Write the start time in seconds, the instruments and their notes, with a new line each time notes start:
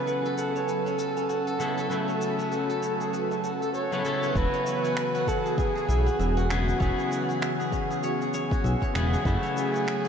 Already playing: clean electric guitar C#3 F#3 B3 E4 A4, analog synth pad F#3 C#4 A4 G#5, guzheng C#4 F#4 A4 B4 C#5 E5, kamancheh B4
0.07 guzheng F#5, cabasa
0.25 guzheng A4, cabasa
0.38 kamancheh A4, guzheng F#5, cabasa
0.56 guzheng C#5, cabasa
0.69 guzheng B4, cabasa
0.86 guzheng C#4, cabasa
0.98 guzheng A4, cabasa
1.17 guzheng C#4, cabasa
1.29 guzheng F#4, cabasa
1.47 guzheng A4, cabasa
1.59 clean electric guitar C#3 F#3 B3 E4 A4, guzheng F#5, cabasa
1.77 guzheng A4, cabasa
1.89 clean electric guitar C#3 F#3 A3 B3 E4, analog synth pad F#4, guzheng B4, cabasa
2.08 guzheng C#4, cabasa
2.21 guzheng A4, cabasa
2.38 guzheng C#4, cabasa
2.52 guzheng F#4, cabasa
2.69 guzheng A4, cabasa
2.82 guzheng C#5, cabasa
3.00 guzheng G#4, cabasa
3.13 guzheng B4, cabasa
3.31 guzheng E5, cabasa
3.44 guzheng F#4, cabasa
3.62 guzheng A4, cabasa
3.74 guzheng A4, kamancheh C#5, cabasa
3.91 clean electric guitar C#3 F#3 B3 E4 B4, guzheng C#5, cabasa
4.04 clean electric guitar C#3 F#3 B3 E4 A4, guzheng A4, cabasa
4.23 guzheng B4, cabasa
4.33 analog synth bass E1, clean electric guitar C#3 F#3 B3 E4, analog synth pad E3 B3 F#4 G#5, guzheng F#4, kamancheh B4, kick, cabasa
4.38 clean electric guitar F#4
4.54 guzheng C#5, cabasa
4.66 guzheng E5, cabasa
4.84 guzheng F#4, cabasa
4.97 guzheng E5, finger snap, cabasa
5.15 guzheng F#4, cabasa
5.27 kamancheh A4, guzheng F#5, kick, cabasa
5.45 guzheng G#4, cabasa
5.58 kamancheh G#4, guzheng E5, kick, cabasa
5.75 guzheng G#4, cabasa
5.88 analog synth bass B1, guzheng E5, cabasa
6.06 guzheng F#4, cabasa
6.19 analog synth bass E1, guzheng E5, cabasa
6.37 guzheng F#4, cabasa
6.49 clean electric guitar C#3 F#3 B3 E4 G#4, guzheng C#4, kamancheh F#4, finger snap, cabasa
6.68 guzheng G#4, cabasa
6.78 analog synth bass E1, clean electric guitar C#3 F#3 B3 E4, guzheng C#5, kick, cabasa
6.82 clean electric guitar G#4
6.98 guzheng G#4, cabasa
7.11 guzheng F#4, cabasa
7.29 guzheng F#4, cabasa
7.42 guzheng E5, finger snap, cabasa
7.60 guzheng G#4, cabasa
7.72 guzheng C#4, kick, cabasa
7.90 guzheng G#4, cabasa
8.03 guzheng C#5, cabasa
8.22 guzheng G#4, cabasa
8.34 guzheng C#5, cabasa
8.51 guzheng F#4, kick, cabasa
8.64 analog synth bass B1, guzheng E5, cabasa
8.82 guzheng C#5, kick, cabasa
8.94 analog synth bass E1, clean electric guitar C#3 F#3 B3 E4 G#4, guzheng F#4, finger snap, cabasa
9.13 guzheng G#4, cabasa
9.23 analog synth bass F#1, clean electric guitar C#3 F#3 A3 B3 E4, analog synth pad F#3 A3 C#4, guzheng F#4, kick, cabasa
9.43 guzheng C#5, cabasa
9.56 kamancheh G#4, guzheng E5, cabasa
9.74 guzheng F#4, cabasa
9.87 guzheng E5, finger snap, cabasa
10.05 guzheng F#4